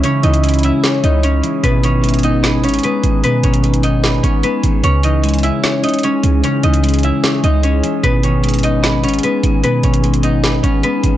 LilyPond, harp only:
\new Staff \with { instrumentName = "Harp" } { \time 4/4 \key gis \minor \tempo 4 = 150 <cis' cis''>8 <dis' dis''>8 r8 <e' e''>4 <dis' dis''>8 <cis' cis''>4 | <b b'>8 <cis' cis''>8 r8 <dis' dis''>4 <cis' cis''>8 <b b'>4 | <b b'>8 <cis' cis''>8 r8 <dis' dis''>4 <cis' cis''>8 <b b'>4 | <cis' cis''>8 <dis' dis''>8 r8 <e' e''>4 <dis' dis''>8 <cis' cis''>4 |
<cis' cis''>8 <dis' dis''>8 r8 <e' e''>4 <dis' dis''>8 <cis' cis''>4 | <b b'>8 <cis' cis''>8 r8 <dis' dis''>4 <cis' cis''>8 <b b'>4 | <b b'>8 <cis' cis''>8 r8 <dis' dis''>4 <cis' cis''>8 <b b'>4 | }